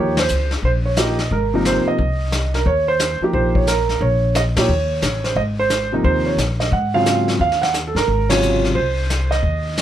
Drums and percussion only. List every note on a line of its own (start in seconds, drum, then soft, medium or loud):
0.17 snare medium
0.17 ride soft
0.28 hi-hat pedal soft
0.51 snare soft
0.63 brush sweep medium
0.63 kick soft
0.97 snare medium
0.97 hi-hat pedal medium
1.19 snare soft
1.31 brush sweep soft
1.31 kick soft
1.65 snare medium
1.65 hi-hat pedal medium
1.99 brush sweep soft
1.99 kick soft
2.32 snare medium
2.32 hi-hat pedal medium
2.54 snare soft
2.66 brush sweep soft
2.66 kick soft
2.99 snare medium
2.99 hi-hat pedal medium
3.34 brush sweep soft
3.34 kick soft
3.55 kick medium
3.67 snare medium
3.67 hi-hat pedal medium
3.89 snare soft
4.01 brush sweep soft
4.01 kick soft
4.35 snare medium
4.35 hi-hat pedal medium
4.56 snare medium
4.56 ride medium
4.69 brush sweep soft
5.02 snare medium
5.02 hi-hat pedal medium
5.24 snare soft
5.36 brush sweep soft
5.36 kick soft
5.70 snare medium
5.70 hi-hat pedal medium
6.04 brush sweep medium
6.04 kick soft
6.38 snare soft
6.38 hi-hat pedal medium
6.60 snare soft
6.72 brush sweep soft
6.72 kick soft
7.06 snare medium
7.06 hi-hat pedal medium
7.28 snare soft
7.40 brush sweep soft
7.40 kick soft
7.52 snare soft
7.63 snare soft
7.74 snare medium
7.74 hi-hat pedal medium
7.96 snare soft
8.08 brush sweep soft
8.08 kick soft
8.30 snare medium
8.30 ride medium
8.42 hi-hat pedal medium
8.64 snare soft
8.76 brush sweep soft
8.76 kick soft
9.10 snare soft
9.10 hi-hat pedal medium
9.32 snare soft
9.43 brush sweep soft
9.43 kick soft
9.77 snare medium
9.77 hi-hat pedal medium